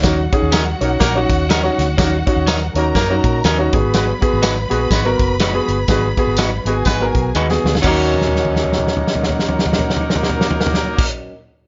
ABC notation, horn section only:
X:1
M:4/4
L:1/16
Q:"Swing" 1/4=123
K:Ebm
V:1 name="Horn section"
[G,B,EB] z4 z [G,B,EB] z [G,B,EB]2 z6 | [G,B,EB] z4 z [G,B,EB] z [G,B,EB]2 z6 | [A,CGc] z4 z [A,CGc] z [A,CGc]2 z6 | [A,CGc] z4 z [A,CGc] z [A,CGc]2 z6 |
[G,B,EB]16- | [G,B,EB]8- [G,B,EB]2 z6 |]